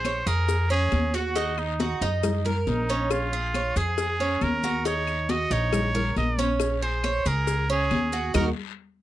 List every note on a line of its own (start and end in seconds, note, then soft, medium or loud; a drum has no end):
0.00 0.20 A#1 medium
0.00 0.29 C5 loud
0.04 0.26 C#5 medium
0.04 cowbell medium
0.04 high conga medium
0.04 short guiro medium
0.04 claves medium
0.04 maracas soft
0.26 0.88 F2 loud
0.26 0.69 G#4 medium
0.26 0.71 A#4 loud
0.26 cowbell medium
0.26 high conga soft
0.26 short guiro medium
0.26 maracas medium
0.48 cowbell loud
0.48 high conga soft
0.48 long guiro medium
0.48 maracas loud
0.70 1.13 C#4 medium
0.70 1.17 G#4 loud
0.70 high conga soft
0.70 maracas soft
0.92 1.95 D#2 medium
0.92 cowbell medium
0.92 high conga medium
0.92 short guiro medium
0.92 claves medium
0.92 maracas soft
1.14 1.35 F#4 medium
1.14 1.60 F#4 loud
1.14 cowbell medium
1.14 short guiro medium
1.14 maracas medium
1.36 1.78 D#4 medium
1.36 cowbell loud
1.36 high conga soft
1.36 long guiro medium
1.36 maracas medium
1.58 2.46 D#4 medium
1.58 high conga soft
1.58 claves medium
1.58 maracas soft
1.79 2.01 F#4 medium
1.79 cowbell medium
1.79 high conga loud
1.79 short guiro medium
1.79 maracas soft
2.01 2.63 F#2 loud
2.01 2.44 D#4 medium
2.01 cowbell medium
2.01 high conga soft
2.01 short guiro medium
2.01 maracas medium
2.23 cowbell loud
2.23 high conga soft
2.23 low conga medium
2.23 long guiro medium
2.23 claves medium
2.23 maracas medium
2.45 2.88 A#4 medium
2.45 cowbell medium
2.45 high conga soft
2.45 low conga medium
2.45 maracas soft
2.67 3.70 A#1 medium
2.67 3.13 D#4 medium
2.67 cowbell medium
2.67 high conga medium
2.67 short guiro medium
2.67 maracas soft
2.89 3.32 C#4 medium
2.89 short guiro medium
2.89 maracas medium
3.10 3.78 F4 medium
3.10 cowbell loud
3.10 high conga soft
3.10 long guiro medium
3.10 claves medium
3.10 maracas medium
3.32 3.54 G#4 medium
3.32 high conga soft
3.32 maracas soft
3.54 3.76 C#5 medium
3.54 cowbell medium
3.54 high conga medium
3.54 short guiro medium
3.54 claves medium
3.54 maracas soft
3.76 4.38 F2 medium
3.76 4.19 G#4 medium
3.76 4.44 G#4 loud
3.76 cowbell medium
3.76 high conga soft
3.76 short guiro medium
3.76 maracas medium
3.98 cowbell loud
3.98 high conga soft
3.98 long guiro medium
3.98 maracas medium
4.20 4.62 C#4 medium
4.20 high conga soft
4.20 maracas soft
4.41 5.45 D#2 medium
4.41 4.86 A#4 loud
4.41 cowbell medium
4.41 high conga medium
4.41 short guiro medium
4.41 claves medium
4.41 maracas soft
4.63 4.85 F#4 medium
4.63 cowbell medium
4.63 high conga medium
4.63 short guiro medium
4.63 maracas medium
4.85 5.28 D#4 medium
4.85 5.32 C#5 loud
4.85 cowbell loud
4.85 long guiro medium
4.85 maracas medium
5.07 high conga soft
5.07 claves medium
5.07 maracas soft
5.29 5.51 F#4 medium
5.29 5.54 D#5 loud
5.29 cowbell medium
5.29 high conga loud
5.29 short guiro medium
5.29 maracas soft
5.50 6.12 A#1 loud
5.50 5.93 D#4 medium
5.50 6.17 C#5 loud
5.50 cowbell medium
5.50 high conga soft
5.50 short guiro medium
5.50 maracas medium
5.73 cowbell loud
5.73 high conga soft
5.73 low conga medium
5.73 long guiro medium
5.73 claves medium
5.73 maracas medium
5.94 6.37 A#4 medium
5.94 cowbell medium
5.94 high conga soft
5.94 low conga medium
5.94 maracas soft
6.16 7.19 A#1 medium
6.16 6.48 D#5 medium
6.16 cowbell medium
6.16 high conga medium
6.16 short guiro medium
6.16 maracas soft
6.38 6.81 C#4 medium
6.38 high conga medium
6.38 short guiro medium
6.38 maracas medium
6.60 cowbell loud
6.60 high conga soft
6.60 long guiro medium
6.60 claves medium
6.60 maracas medium
6.82 7.03 G#4 medium
6.82 7.29 C5 loud
6.82 high conga soft
6.82 maracas soft
7.04 7.25 C#5 medium
7.04 cowbell medium
7.04 high conga medium
7.04 short guiro medium
7.04 claves medium
7.04 maracas soft
7.25 7.87 C#2 medium
7.25 7.68 G#4 medium
7.25 7.70 A#4 loud
7.25 cowbell medium
7.25 high conga soft
7.25 short guiro medium
7.25 maracas medium
7.47 cowbell loud
7.47 high conga soft
7.47 maracas medium
7.69 8.12 C#4 medium
7.69 8.32 G#4 loud
7.69 high conga soft
7.69 maracas soft
7.91 8.32 D#2 medium
7.91 cowbell medium
7.91 high conga medium
7.91 short guiro medium
7.91 claves medium
7.91 maracas soft
8.12 8.33 F#4 medium
8.12 cowbell medium
8.12 short guiro medium
8.12 maracas medium
8.34 8.51 D#2 loud
8.34 8.48 D#4 loud
8.34 8.49 F#4 medium
8.34 8.48 A#4 medium
8.34 8.45 A#4 medium
8.34 cowbell loud
8.34 low conga loud
8.34 long guiro loud
8.34 claves loud
8.34 maracas medium